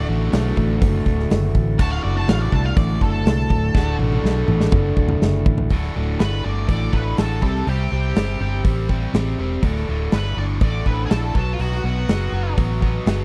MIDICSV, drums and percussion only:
0, 0, Header, 1, 2, 480
1, 0, Start_track
1, 0, Tempo, 490196
1, 1758, Time_signature, 4, 2, 24, 8
1, 12970, End_track
2, 0, Start_track
2, 0, Title_t, "Drums"
2, 319, Note_on_c, 9, 46, 55
2, 327, Note_on_c, 9, 38, 107
2, 417, Note_off_c, 9, 46, 0
2, 425, Note_off_c, 9, 38, 0
2, 560, Note_on_c, 9, 36, 75
2, 658, Note_off_c, 9, 36, 0
2, 799, Note_on_c, 9, 46, 67
2, 801, Note_on_c, 9, 36, 115
2, 897, Note_off_c, 9, 46, 0
2, 899, Note_off_c, 9, 36, 0
2, 1038, Note_on_c, 9, 36, 76
2, 1136, Note_off_c, 9, 36, 0
2, 1173, Note_on_c, 9, 38, 32
2, 1271, Note_off_c, 9, 38, 0
2, 1277, Note_on_c, 9, 46, 54
2, 1286, Note_on_c, 9, 38, 103
2, 1375, Note_off_c, 9, 46, 0
2, 1384, Note_off_c, 9, 38, 0
2, 1516, Note_on_c, 9, 36, 85
2, 1614, Note_off_c, 9, 36, 0
2, 1755, Note_on_c, 9, 36, 109
2, 1755, Note_on_c, 9, 49, 87
2, 1852, Note_off_c, 9, 49, 0
2, 1853, Note_off_c, 9, 36, 0
2, 2234, Note_on_c, 9, 46, 56
2, 2242, Note_on_c, 9, 38, 112
2, 2331, Note_off_c, 9, 46, 0
2, 2340, Note_off_c, 9, 38, 0
2, 2471, Note_on_c, 9, 36, 74
2, 2569, Note_off_c, 9, 36, 0
2, 2710, Note_on_c, 9, 36, 123
2, 2714, Note_on_c, 9, 46, 63
2, 2807, Note_off_c, 9, 36, 0
2, 2812, Note_off_c, 9, 46, 0
2, 2950, Note_on_c, 9, 36, 80
2, 3047, Note_off_c, 9, 36, 0
2, 3193, Note_on_c, 9, 46, 54
2, 3201, Note_on_c, 9, 38, 106
2, 3291, Note_off_c, 9, 46, 0
2, 3299, Note_off_c, 9, 38, 0
2, 3429, Note_on_c, 9, 36, 83
2, 3527, Note_off_c, 9, 36, 0
2, 3668, Note_on_c, 9, 36, 105
2, 3681, Note_on_c, 9, 38, 58
2, 3766, Note_off_c, 9, 36, 0
2, 3779, Note_off_c, 9, 38, 0
2, 3913, Note_on_c, 9, 48, 65
2, 4011, Note_off_c, 9, 48, 0
2, 4036, Note_on_c, 9, 48, 58
2, 4134, Note_off_c, 9, 48, 0
2, 4165, Note_on_c, 9, 38, 69
2, 4263, Note_off_c, 9, 38, 0
2, 4387, Note_on_c, 9, 47, 64
2, 4485, Note_off_c, 9, 47, 0
2, 4510, Note_on_c, 9, 38, 70
2, 4607, Note_off_c, 9, 38, 0
2, 4620, Note_on_c, 9, 45, 84
2, 4624, Note_on_c, 9, 36, 118
2, 4718, Note_off_c, 9, 45, 0
2, 4722, Note_off_c, 9, 36, 0
2, 4864, Note_on_c, 9, 36, 90
2, 4962, Note_off_c, 9, 36, 0
2, 4979, Note_on_c, 9, 45, 82
2, 5077, Note_off_c, 9, 45, 0
2, 5111, Note_on_c, 9, 38, 91
2, 5209, Note_off_c, 9, 38, 0
2, 5346, Note_on_c, 9, 36, 105
2, 5444, Note_off_c, 9, 36, 0
2, 5462, Note_on_c, 9, 43, 86
2, 5560, Note_off_c, 9, 43, 0
2, 5577, Note_on_c, 9, 46, 48
2, 5586, Note_on_c, 9, 36, 94
2, 5675, Note_off_c, 9, 46, 0
2, 5684, Note_off_c, 9, 36, 0
2, 5708, Note_on_c, 9, 38, 28
2, 5806, Note_off_c, 9, 38, 0
2, 6064, Note_on_c, 9, 46, 53
2, 6073, Note_on_c, 9, 38, 110
2, 6162, Note_off_c, 9, 46, 0
2, 6171, Note_off_c, 9, 38, 0
2, 6548, Note_on_c, 9, 36, 106
2, 6548, Note_on_c, 9, 46, 54
2, 6645, Note_off_c, 9, 36, 0
2, 6646, Note_off_c, 9, 46, 0
2, 6787, Note_on_c, 9, 36, 81
2, 6884, Note_off_c, 9, 36, 0
2, 7024, Note_on_c, 9, 46, 55
2, 7033, Note_on_c, 9, 38, 97
2, 7122, Note_off_c, 9, 46, 0
2, 7131, Note_off_c, 9, 38, 0
2, 7268, Note_on_c, 9, 36, 86
2, 7366, Note_off_c, 9, 36, 0
2, 7399, Note_on_c, 9, 38, 30
2, 7497, Note_off_c, 9, 38, 0
2, 7511, Note_on_c, 9, 46, 58
2, 7609, Note_off_c, 9, 46, 0
2, 7988, Note_on_c, 9, 46, 53
2, 7997, Note_on_c, 9, 38, 112
2, 8086, Note_off_c, 9, 46, 0
2, 8094, Note_off_c, 9, 38, 0
2, 8467, Note_on_c, 9, 36, 109
2, 8468, Note_on_c, 9, 46, 55
2, 8565, Note_off_c, 9, 36, 0
2, 8566, Note_off_c, 9, 46, 0
2, 8708, Note_on_c, 9, 36, 86
2, 8806, Note_off_c, 9, 36, 0
2, 8948, Note_on_c, 9, 46, 51
2, 8957, Note_on_c, 9, 38, 104
2, 9046, Note_off_c, 9, 46, 0
2, 9055, Note_off_c, 9, 38, 0
2, 9425, Note_on_c, 9, 46, 51
2, 9428, Note_on_c, 9, 36, 101
2, 9523, Note_off_c, 9, 46, 0
2, 9525, Note_off_c, 9, 36, 0
2, 9558, Note_on_c, 9, 38, 32
2, 9656, Note_off_c, 9, 38, 0
2, 9904, Note_on_c, 9, 46, 52
2, 9913, Note_on_c, 9, 38, 103
2, 10002, Note_off_c, 9, 46, 0
2, 10011, Note_off_c, 9, 38, 0
2, 10383, Note_on_c, 9, 46, 52
2, 10391, Note_on_c, 9, 36, 116
2, 10481, Note_off_c, 9, 46, 0
2, 10489, Note_off_c, 9, 36, 0
2, 10634, Note_on_c, 9, 36, 79
2, 10732, Note_off_c, 9, 36, 0
2, 10870, Note_on_c, 9, 46, 51
2, 10879, Note_on_c, 9, 38, 110
2, 10968, Note_off_c, 9, 46, 0
2, 10976, Note_off_c, 9, 38, 0
2, 11114, Note_on_c, 9, 36, 92
2, 11212, Note_off_c, 9, 36, 0
2, 11353, Note_on_c, 9, 46, 56
2, 11451, Note_off_c, 9, 46, 0
2, 11480, Note_on_c, 9, 38, 32
2, 11578, Note_off_c, 9, 38, 0
2, 11833, Note_on_c, 9, 46, 55
2, 11842, Note_on_c, 9, 38, 108
2, 11931, Note_off_c, 9, 46, 0
2, 11940, Note_off_c, 9, 38, 0
2, 12314, Note_on_c, 9, 46, 54
2, 12316, Note_on_c, 9, 36, 109
2, 12411, Note_off_c, 9, 46, 0
2, 12414, Note_off_c, 9, 36, 0
2, 12556, Note_on_c, 9, 36, 84
2, 12654, Note_off_c, 9, 36, 0
2, 12792, Note_on_c, 9, 46, 56
2, 12801, Note_on_c, 9, 38, 105
2, 12890, Note_off_c, 9, 46, 0
2, 12899, Note_off_c, 9, 38, 0
2, 12970, End_track
0, 0, End_of_file